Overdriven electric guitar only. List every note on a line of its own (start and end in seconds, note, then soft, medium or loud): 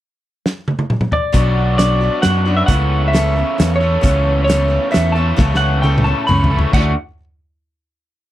1.33 2.45 B2 medium
1.33 2.45 F#3 medium
1.33 2.46 B3 medium
1.33 2.45 D4 medium
1.33 2.44 F#4 medium
2.45 2.68 B2 medium
2.45 2.67 F#3 medium
2.45 2.68 B3 medium
2.45 2.68 D4 medium
2.45 2.67 F#4 medium
2.68 3.82 C#3 medium
2.68 3.82 E3 medium
2.68 3.81 A3 medium
2.68 3.80 C#4 medium
2.68 3.80 A4 medium
3.81 4.00 C#3 medium
3.81 4.01 E3 medium
3.81 4.02 A3 medium
3.81 4.02 C#4 medium
3.81 4.03 A4 medium
4.01 5.13 C#3 medium
4.01 5.17 E3 medium
4.01 5.17 A3 medium
4.01 5.16 C#4 medium
4.01 5.15 A4 medium
5.15 5.37 C#3 medium
5.15 5.39 E3 medium
5.15 5.39 A3 medium
5.15 5.40 C#4 medium
5.15 5.40 A4 medium
5.38 6.49 C#3 medium
5.38 6.50 E3 medium
5.38 6.50 A3 medium
5.38 6.50 C#4 medium
5.38 6.49 A4 loud
6.50 6.73 C#3 medium
6.50 6.72 E3 medium
6.50 6.71 A3 medium
6.50 6.72 C#4 medium
6.50 6.71 A4 medium
6.73 6.91 D3 medium
6.73 6.91 A3 medium
6.73 6.91 D4 loud
6.73 6.91 F#4 loud